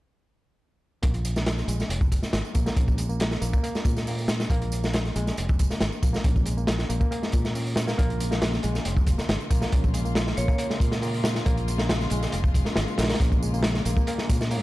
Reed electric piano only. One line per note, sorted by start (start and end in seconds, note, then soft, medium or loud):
1.02 1.13 A#3 medium
1.14 1.23 F4 medium
1.36 1.46 A#3 medium
1.68 1.78 G#3 medium
2.23 2.33 A#3 medium
2.54 2.65 A#3 medium
2.66 2.76 A#3 medium
2.76 2.97 C#4 medium
2.98 3.08 G#3 medium
3.09 3.20 A#3 medium
3.41 3.52 A#3 medium
3.53 3.62 A#3 medium
3.63 3.74 A#3 medium
3.75 3.84 G#3 medium
4.07 4.17 A#3 medium
4.40 4.49 G#3 medium
4.51 4.61 A#3 loud
4.62 4.71 F4 medium
4.84 4.94 A#3 medium
5.16 5.26 G#3 loud
5.71 5.81 A#3 medium
6.03 6.12 A#3 medium
6.13 6.23 A#3 medium
6.24 6.45 C#4 medium
6.46 6.56 G#3 medium
6.57 6.67 A#3 medium
6.89 6.99 A#3 medium
7.00 7.10 A#3 medium
7.11 7.21 A#3 medium
7.22 7.32 G#3 medium
7.55 7.65 C#4 medium
7.76 7.83 F4 medium
7.87 7.97 A#3 loud
7.98 8.08 A#3 loud
8.09 8.19 F4 medium
8.31 8.41 A#3 medium
8.63 8.74 G#3 loud
9.18 9.28 A#3 medium
9.51 9.60 A#3 medium
9.62 9.71 A#3 medium
9.72 9.93 C#4 medium
9.94 10.04 G#3 medium
10.05 10.15 A#3 medium
10.37 10.47 A#3 medium
10.48 10.57 A#3 medium
10.59 10.69 A#3 medium
10.70 10.80 G#3 medium
11.02 11.13 A#3 medium
11.36 11.45 G#3 medium
11.46 11.56 A#3 loud
11.57 11.67 F4 medium
11.79 11.89 A#3 medium
12.11 12.22 G#3 loud
12.66 12.76 A#3 medium
12.99 13.09 A#3 medium
13.10 13.19 A#3 medium
13.21 13.41 C#4 medium
13.43 13.52 G#3 medium
13.54 13.63 A#3 medium
13.86 13.96 A#3 medium
13.97 14.06 A#3 medium
14.08 14.18 A#3 medium
14.19 14.28 G#3 medium
14.51 14.61 A#3 medium